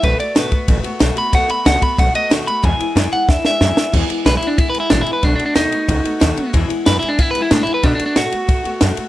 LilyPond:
<<
  \new Staff \with { instrumentName = "Clean electric guitar" } { \time 4/4 \key e \major \tempo 4 = 184 b'8 d''8 b'2 r8 b''8 | fis''8 b''8 fis''8 b''8 fis''8 dis''8 r8 b''8 | gis''4. fis''8 e''8 e''4. | r4 \tuplet 3/2 { b'8 e'8 d'8 e'8 b'8 e'8 d'8 e'8 b'8 } |
\tuplet 3/2 { d'8 d'8 d'8 } dis'2. | r4 \tuplet 3/2 { b'8 e'8 d'8 e'8 b'8 e'8 d'8 e'8 b'8 } | \tuplet 3/2 { d'8 d'8 d'8 } fis'2. | }
  \new Staff \with { instrumentName = "Steel-string acoustic guitar" } { \time 4/4 \key e \major <b, dis a b fis'>8 <a b fis'>8 <b, dis a b fis'>8 <a b fis'>8 <dis a b fis'>8 <a b fis'>8 <b, dis a b fis'>8 <a b fis'>8 | <b, dis a b fis'>8 <a b fis'>8 <b, dis a b fis'>8 <a b fis'>8 <dis a b fis'>8 <a b fis'>8 <b, dis a b fis'>8 <a b fis'>8 | <e, b, e gis b e'>8 <e gis b e'>8 <e, b, e gis b e'>8 <e gis b e'>8 <e gis b e'>8 <e gis b e'>8 <e, b, e gis b e'>8 <e gis b e'>8 | <e, b, e gis b e'>8 <e gis b e'>8 <e, b, e gis b e'>8 <e gis b e'>8 <e gis b e'>8 <e gis b e'>8 <e, b, e gis b e'>8 <e gis b e'>8 |
<b, dis a b fis'>8 <a b fis'>8 <b, dis a b fis'>8 <a b fis'>8 <dis a b fis'>8 <a b fis'>8 <b, dis a b fis'>8 <a b fis'>8 | <e, b, e gis b e'>8 <e gis b e'>8 <e, b, e gis b e'>8 <e gis b e'>8 <e gis b e'>8 <e gis b e'>8 <e, b, e gis b e'>8 <e gis b e'>8 | <b, dis a b fis'>8 <a b fis'>8 <b, dis a b fis'>8 <a b fis'>8 <dis a b fis'>8 <a b fis'>8 <b, dis a b fis'>8 <a b fis'>8 | }
  \new Staff \with { instrumentName = "Upright bass" } { \clef bass \time 4/4 \key e \major b,,8 r8 gis,,8 r8 a,,8 r8 b,,8 r8 | dis,8 r8 cis,8 r8 b,,8 r8 dis,8 r8 | e,8 r8 fis,8 r8 e,8 r8 fis,8 r8 | e,8 r8 b,,8 r8 gis,,8 r8 a,,8 r8 |
b,,8 r8 dis,8 r8 cis,8 r8 dis,8 r8 | e,8 r8 fis,8 r8 gis,8 r8 a,8 r8 | b,8 r8 a,8 r8 gis,8 r8 fis,8 r8 | }
  \new DrumStaff \with { instrumentName = "Drums" } \drummode { \time 4/4 <bd cymr>8 cymr8 <cymr sn>8 <bd cymr>8 <bd cymr>8 cymr8 <cymr sn>8 cymr8 | <bd cymr>8 cymr8 <cymr sn>8 <bd cymr>8 <bd cymr>8 cymr8 <cymr sn>8 cymr8 | <bd cymr>8 cymr8 <cymr sn>8 cymr8 <bd sn>8 sn8 sn8 sn8 | <cymc bd>8 cymr8 <cymr sn>8 cymr8 <bd cymr>8 cymr8 <cymr sn>8 cymr8 |
<bd cymr>8 cymr8 <cymr sn>8 cymr8 <bd cymr>8 cymr8 <cymr sn>8 cymr8 | <bd cymr>8 cymr8 <cymr sn>8 cymr8 <bd cymr>8 cymr8 <cymr sn>8 cymr8 | <bd cymr>8 cymr8 <cymr sn>8 cymr8 <bd cymr>8 cymr8 <cymr sn>8 cymr8 | }
>>